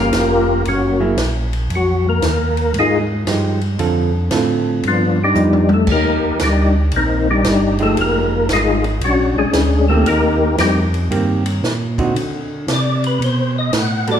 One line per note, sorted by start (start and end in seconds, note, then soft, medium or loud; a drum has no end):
0.00 0.11 G1 medium
0.00 0.62 F3 medium
0.00 0.62 A#3 medium
0.00 0.63 A#3 medium
0.00 0.62 C#4 medium
0.00 0.64 F4 medium
0.00 0.64 G4 medium
0.00 0.63 A#4 loud
0.13 0.64 F1 medium
0.13 snare medium
0.13 hi-hat pedal medium
0.13 ride medium
0.65 1.16 F#1 medium
0.65 1.01 F#3 medium
0.65 1.01 A#3 medium
0.65 1.01 C#4 medium
0.65 1.01 F#4 medium
0.65 ride medium
1.00 1.16 F#3 medium
1.00 1.16 A#3 medium
1.00 1.16 E4 medium
1.00 1.16 G#4 medium
1.17 1.68 A#1 medium
1.17 snare medium
1.17 hi-hat pedal medium
1.17 ride medium
1.53 ride soft
1.70 2.21 F2 medium
1.70 ride medium
1.75 2.07 F#3 medium
1.75 2.07 F#4 medium
2.09 2.72 A#3 medium
2.09 2.73 A#4 loud
2.22 2.73 D#2 medium
2.22 snare medium
2.22 hi-hat pedal medium
2.22 ride medium
2.57 ride soft
2.74 3.25 G#2 medium
2.74 ride medium
2.79 2.99 G#3 medium
2.79 2.98 D#4 medium
2.79 2.99 F4 medium
2.79 2.99 G#4 medium
3.27 3.78 G2 medium
3.27 3.59 F3 medium
3.27 3.59 G#3 medium
3.27 3.59 D#4 medium
3.27 3.59 G4 medium
3.27 snare medium
3.27 hi-hat pedal medium
3.27 ride medium
3.61 ride soft
3.78 4.29 F2 medium
3.78 4.10 D3 medium
3.78 4.10 C4 medium
3.78 4.10 F4 medium
3.78 4.11 A4 medium
3.78 ride medium
4.31 4.82 A2 medium
4.31 4.83 D3 medium
4.31 4.84 C4 medium
4.31 4.84 F4 medium
4.31 4.84 A4 medium
4.31 snare medium
4.31 hi-hat pedal medium
4.31 ride medium
4.83 5.35 G2 medium
4.83 ride medium
4.88 5.20 F3 medium
4.88 5.20 B3 medium
4.88 5.20 D4 medium
4.88 5.19 F4 medium
5.24 5.70 G3 medium
5.24 5.70 D4 medium
5.24 5.70 D#4 medium
5.24 5.70 G4 medium
5.34 5.86 F2 medium
5.34 5.66 F3 medium
5.34 5.67 B3 medium
5.34 5.67 D#4 medium
5.34 hi-hat pedal medium
5.34 mid tom soft
5.53 mid tom medium
5.69 mid tom medium
5.74 5.89 A3 medium
5.74 5.89 A4 medium
5.87 6.20 D#2 medium
5.87 kick medium
5.87 crash medium
5.91 6.39 A#3 medium
5.91 6.39 D#4 medium
5.91 6.38 G4 medium
5.91 6.39 A#4 medium
6.24 6.32 D#2 soft
6.39 6.91 D2 medium
6.39 6.76 D4 medium
6.39 6.75 G4 medium
6.39 snare medium
6.39 hi-hat pedal medium
6.39 ride medium
6.44 6.76 G3 medium
6.44 6.76 D#4 medium
6.92 7.44 A#1 medium
6.92 ride medium
6.96 7.29 D#3 soft
6.96 7.28 A#3 soft
6.96 7.28 C4 soft
6.96 7.28 D#4 medium
7.30 7.78 G3 medium
7.30 7.78 D4 medium
7.30 7.78 D#4 medium
7.30 7.78 G4 medium
7.44 7.96 G1 medium
7.44 snare medium
7.44 hi-hat pedal medium
7.44 ride medium
7.79 8.46 F3 medium
7.79 8.46 G#3 medium
7.79 7.98 A3 medium
7.79 8.46 D#4 medium
7.79 8.47 G4 medium
7.79 ride soft
7.83 7.98 A4 medium
7.97 8.48 F1 medium
7.97 8.48 A#4 loud
7.97 ride medium
8.01 8.48 A#3 medium
8.49 9.00 G#1 medium
8.49 8.85 F4 medium
8.49 snare medium
8.49 hi-hat pedal medium
8.49 ride medium
8.53 8.85 G#3 medium
8.53 8.85 D#4 medium
8.53 8.85 G#4 medium
8.84 ride soft
9.01 9.34 A#1 medium
9.01 9.37 F#3 medium
9.01 9.37 C#4 medium
9.01 9.37 D4 medium
9.01 9.37 F#4 medium
9.01 ride medium
9.36 9.45 A#1 soft
9.36 9.86 G#3 medium
9.36 9.87 C#4 medium
9.36 9.86 D4 medium
9.36 9.86 G#4 medium
9.53 10.04 D2 medium
9.53 snare medium
9.53 hi-hat pedal soft
9.53 ride medium
9.88 10.05 D#3 medium
9.88 10.06 A3 medium
9.88 10.05 A#3 medium
9.88 10.05 C4 medium
9.88 10.05 G4 medium
9.88 10.06 A4 loud
10.06 10.57 D#2 medium
10.06 10.56 A#3 medium
10.06 10.56 D#4 medium
10.06 10.56 G4 medium
10.06 10.56 A#4 loud
10.06 ride medium
10.58 11.09 F2 medium
10.58 10.81 G3 medium
10.58 10.81 C4 medium
10.58 10.81 D#4 medium
10.58 10.80 G4 medium
10.58 snare medium
10.58 hi-hat pedal medium
10.58 ride medium
10.94 ride soft
11.10 11.61 G2 medium
11.10 11.42 D#3 medium
11.10 11.43 A#3 medium
11.10 11.43 C4 medium
11.10 11.43 G4 medium
11.10 ride medium
11.46 ride medium
11.63 12.14 A#2 medium
11.63 snare medium
11.63 hi-hat pedal medium
11.98 12.14 D3 medium
11.98 12.14 C4 medium
11.98 12.14 D#4 medium
11.98 12.15 F#4 medium
11.98 kick medium
11.98 ride soft
12.16 12.67 D3 medium
12.16 ride medium
12.68 13.19 C3 medium
12.68 snare medium
12.68 hi-hat pedal medium
12.68 ride medium
12.73 13.04 D5 medium
13.04 13.22 B4 medium
13.04 ride medium
13.21 13.71 B2 medium
13.21 13.56 C5 medium
13.21 ride medium
13.58 13.74 D#5 loud
13.73 14.20 A2 medium
13.73 snare medium
13.73 hi-hat pedal medium
13.73 ride medium
13.78 14.10 F#5 loud
14.07 14.20 G3 medium
14.07 14.20 B3 medium
14.07 14.20 F#4 medium
14.07 14.20 A4 medium
14.07 ride soft
14.11 14.20 D5 loud